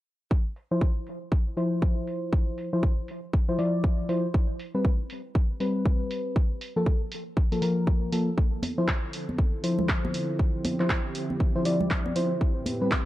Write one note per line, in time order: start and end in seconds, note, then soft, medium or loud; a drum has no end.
0.31 kick loud
0.56 open hi-hat loud
0.71 0.85 F3 medium
0.71 0.85 E4 medium
0.71 0.85 C5 medium
0.81 kick loud
1.07 open hi-hat loud
1.32 kick loud
1.57 2.69 F3 medium
1.57 2.69 E4 medium
1.57 2.70 C5 medium
1.57 open hi-hat loud
1.82 kick loud
2.07 open hi-hat medium
2.33 kick loud
2.58 open hi-hat loud
2.73 2.86 F3 medium
2.73 2.86 E4 medium
2.73 2.86 C5 medium
2.83 kick loud
3.08 open hi-hat loud
3.33 kick loud
3.49 3.57 F3 medium
3.49 3.57 E4 medium
3.49 3.57 C5 medium
3.59 4.07 F3 medium
3.59 4.07 E4 medium
3.59 4.07 D5 medium
3.59 open hi-hat loud
3.84 kick loud
4.09 4.26 F3 medium
4.09 4.26 E4 medium
4.09 4.26 C5 medium
4.09 open hi-hat loud
4.34 kick loud
4.59 open hi-hat loud
4.75 4.88 G3 medium
4.75 4.88 C4 medium
4.75 4.88 B4 medium
4.85 kick loud
5.10 open hi-hat loud
5.35 kick loud
5.60 6.35 G3 medium
5.60 6.35 C4 medium
5.60 6.35 B4 medium
5.60 open hi-hat loud
5.86 kick loud
6.11 open hi-hat loud
6.36 kick loud
6.61 open hi-hat loud
6.76 6.90 F3 medium
6.76 6.90 A#3 medium
6.76 6.90 A4 medium
6.86 kick loud
7.12 open hi-hat loud
7.37 kick loud
7.52 7.60 F3 medium
7.52 7.60 A#3 medium
7.52 7.61 A4 medium
7.52 open hi-hat medium
7.62 8.10 F3 medium
7.62 8.10 A#3 medium
7.62 8.10 A#4 medium
7.62 open hi-hat loud
7.87 kick loud
8.12 8.30 F3 medium
8.12 8.30 A#3 medium
8.12 8.30 A4 medium
8.12 open hi-hat loud
8.38 12.37 D3 medium
8.38 12.37 F3 medium
8.38 13.05 C4 medium
8.38 13.05 E4 medium
8.38 10.37 A4 medium
8.38 kick loud
8.63 open hi-hat loud
8.63 high conga medium
8.78 8.91 F3 medium
8.78 8.91 E4 medium
8.78 8.91 C5 medium
8.88 kick loud
8.88 clap loud
9.13 open hi-hat medium
9.29 high conga medium
9.38 kick loud
9.63 10.76 F3 medium
9.63 10.76 E4 medium
9.63 10.76 C5 medium
9.63 open hi-hat loud
9.79 low conga medium
9.89 kick loud
9.89 clap loud
10.05 high conga medium
10.14 open hi-hat loud
10.39 12.39 G4 medium
10.39 kick loud
10.65 open hi-hat loud
10.65 high conga medium
10.80 10.93 F3 medium
10.80 10.93 E4 medium
10.80 10.93 C5 medium
10.80 clap soft
10.90 kick loud
10.90 clap loud
11.15 open hi-hat medium
11.30 high conga medium
11.40 kick loud
11.55 11.64 F3 medium
11.55 11.64 E4 medium
11.55 11.64 C5 medium
11.65 12.13 F3 medium
11.65 12.13 E4 medium
11.65 12.14 D5 medium
11.65 open hi-hat medium
11.81 low conga medium
11.91 kick loud
11.91 clap loud
12.06 high conga medium
12.16 12.33 F3 medium
12.16 12.33 E4 medium
12.16 12.33 C5 medium
12.16 open hi-hat loud
12.41 13.05 A2 medium
12.41 13.05 G4 medium
12.41 13.05 B4 medium
12.41 kick loud
12.66 open hi-hat medium
12.66 high conga medium
12.81 12.95 G3 medium
12.81 12.95 C4 medium
12.81 12.95 B4 medium
12.91 kick loud
12.91 clap loud